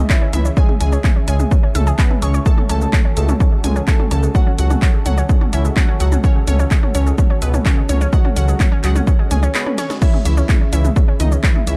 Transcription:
Already playing: C#4 G#4 E5
0.10 E3 C#4 E4 E5, kick, clap, shaker
0.22 C#4
0.33 C#2 E3 G#3 E4 E5, closed hi-hat, mid tom, shaker
0.45 C#4, shaker
0.57 G#3 C#4 G#4 G#5, kick, shaker
0.69 G#3, mid tom
0.80 C#2 G#3 C#4 G#4 G#5, closed hi-hat, shaker
0.92 C#4, shaker
1.04 G#3, kick, clap, mid tom, shaker
1.16 C#4
1.28 C#2 G#3 C#4 G#4 G#5, closed hi-hat, shaker
1.40 G#3, mid tom, shaker
1.51 C#4, kick, shaker
1.63 C#4
1.75 C#2 A3 A4 E5 A5, closed hi-hat, mid tom, shaker
1.87 G#4, shaker
1.99 B3 G#4 B4 B5, kick, clap, shaker
2.10 G#3, mid tom
2.22 C#2 C#4 G#4 C#5 C#6, closed hi-hat, shaker
2.34 C#5, shaker
2.46 G#3 A3 F#4 A4 A5, kick, shaker
2.58 C#4, mid tom
2.69 C#2 A3 C#4 A4 A5, closed hi-hat, shaker
2.81 G#3, shaker
2.93 C#4, kick, clap, mid tom, shaker
3.05 C#4
3.17 C#2 G#3 A3 A4 A5, closed hi-hat, shaker
3.29 C#4, mid tom, shaker
3.40 C#4, kick, shaker
3.52 G#3
3.64 C#2 G#3 C#4 G#4 G#5, closed hi-hat, mid tom, shaker
3.76 C#4, shaker
3.88 G#3 A3 A4 A5, kick, clap, shaker
3.99 C#4, mid tom
4.11 C#2 A3 C#4 A4 A5, closed hi-hat, shaker
4.23 G#3, shaker
4.35 F#3 C#4 F#4 F#5, kick, mid tom, shaker
4.47 C#4
4.58 C#2 F#3 G#3 F#4 F#5, closed hi-hat, shaker
4.70 C#4, mid tom, shaker
4.82 C#4, kick, clap, shaker
4.94 G#3
5.06 C#2 F#3 C#4 F#4 F#5, closed hi-hat, mid tom, shaker
5.18 C#4, shaker
5.29 G#3, kick, shaker
5.41 C#4, mid tom
5.53 C#2 E3 C#4 E4 E5, closed hi-hat, shaker
5.65 G#3, shaker
5.76 F#3 C#4 F#4 F#5, kick, clap, mid tom, shaker
5.88 C#4
6.00 C#2 F#3 G#3 F#4 F#5, closed hi-hat, shaker
6.12 C#4, mid tom, shaker
6.24 C#3 C#4 C#5, kick, shaker
6.36 G#3
6.47 C#2 C#3 C#4 C#5, closed hi-hat, mid tom, shaker
6.59 C#4, shaker
6.71 G#3, kick, clap, shaker
6.83 C#4, mid tom
6.95 C#2 C#3 C#4 C#5, closed hi-hat, shaker
7.07 G#3, shaker
7.18 C#4, kick, mid tom, shaker
7.30 C#4
7.42 C#2 B2 G#3 B3 B4, closed hi-hat, shaker
7.54 C#4, mid tom, shaker
7.66 C#3 C#4 C#5, kick, clap, shaker
7.77 G#3
7.89 C#2 C#3 C#4 C#5, closed hi-hat, mid tom, shaker
8.01 C#4, shaker
8.13 F#3 G#3 F#4 F#5, kick, shaker
8.25 C#4, mid tom
8.36 C#2 F#3 C#4 F#4 F#5, closed hi-hat, shaker
8.48 G#3, shaker
8.60 C#4, kick, clap, mid tom, shaker
8.72 C#4
8.84 C#2 F#3 G#3 F#4 F#5, clap, closed hi-hat, shaker
8.96 C#4, mid tom, shaker
9.07 C#4, kick, swell, shaker
9.19 G#3
9.31 C#2 G#3 C#4 G#4 G#5, closed hi-hat, mid tom, shaker
9.43 C#4, shaker
9.55 G#3 B3 B4 B5, clap, shaker
9.66 C#4, mid tom
9.78 C#4 C#5 C#6, snare, closed hi-hat, shaker
9.90 G#3, snare, shaker
10.02 E3 C#4 E4 G#4 E5, kick, crash, shaker
10.14 G#3, mid tom
10.25 C#2 E3 C#4 E4 E5, closed hi-hat, shaker
10.37 C#4, shaker
10.49 G#3, kick, clap, mid tom, shaker
10.61 C#4
10.73 C#2 E3 C#4 E4 E5, closed hi-hat, shaker
10.85 G#3, mid tom, shaker
10.96 C#4, kick, shaker
11.08 C#4
11.20 C#2 D#3 G#3 D#4 D#5, closed hi-hat, mid tom, shaker
11.32 C#4, shaker
11.44 E3 C#4 E4 E5, kick, clap, shaker
11.55 G#3, mid tom
11.67 C#2 E3 C#4 E4 E5, closed hi-hat, shaker

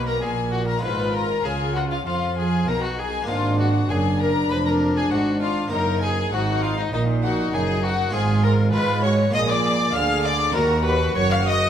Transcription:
Already playing: B1 B2 A#3 D#4 F#4
0.06 A#4 A#5
0.21 A#1 A#2 G#4 G#5
0.51 F#4 F#5
0.66 A#4 A#5
0.77 G#3 F4
0.82 G#1 G#2 F4 B4 B5
1.13 A#4 A#5
1.44 C#2 C#3 F4 G#4 G#5
1.75 F#4 F#5
1.90 F4 F5
2.06 F2 F3 F4 F5
2.36 G#4 G#5
2.67 B1 B2 D#4 A#4 A#5
2.82 F#4 F#5
2.98 G#4 G#5
3.22 G#3 A#3 D4
3.27 G#1 G#2 D4 F4 F5
3.59 F#4 F#5
3.89 F#1 F#2 D4 G#4 G#5
4.20 A#4 A#5
4.50 F1 F2 B4 B5
4.65 A#4 A#5
4.97 G#4 G#5
5.11 G#1 G#2 F#4 F#5
5.41 F4 F5
5.68 F#1 F#2 A#3 D#4 A#4
5.72 F#2 A#4 A#5
6.02 G#4 G#5
6.32 G#1 G#2 D#4 F#4 F#5
6.62 F4 F5
6.78 D#4 D#5
6.93 A#1 A#2 D#4 D#5
7.24 F#4 F#5
7.53 F#1 F#2 G#4 G#5
7.83 F#4 F#5
8.09 B3 F4 G#4
8.13 G#1 G#2 F4 G#4 G#5
8.43 A#4 A#5
8.72 G#2 G#3 F4 B4 B5
9.02 F#4 C#5 C#6
9.30 A#1 A#2 A#3 F4 G#4 D#5
9.35 A#2 G#4 D#6
9.48 D5 D6
9.93 D2 D3 G#4 F5 F6
10.24 D5 D6
10.52 D#2 F#4 A#4 A#5
10.85 B4 B5
11.15 F#1 F#2 C#5 C#6
11.31 F5 F6
11.46 D#5 D#6

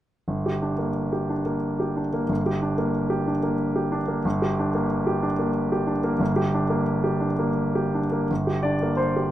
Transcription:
0.28 G1
0.46 G4
0.62 D4
0.79 A#3
1.12 G4
1.29 D4
1.46 A#3
1.80 G4
1.96 D4
2.14 A#3
2.29 G1
2.46 G4
2.62 D4
2.78 A#3
3.10 G4
3.27 D4
3.43 A#3
3.76 G4
3.92 D4
4.08 A#3
4.25 G1
4.42 G4
4.59 D4
4.75 A#3
5.07 G4
5.23 D4
5.39 A#3
5.72 G4
5.87 D4
6.04 A#3
6.20 G1
6.36 G4
6.54 D4
6.70 A#3
7.04 G4
7.21 D4
7.39 A#3
7.75 G4
7.94 D4
8.12 A#3
8.31 G1
8.47 G4
8.63 D4 D5
8.83 A#3
8.97 C5
9.16 G4

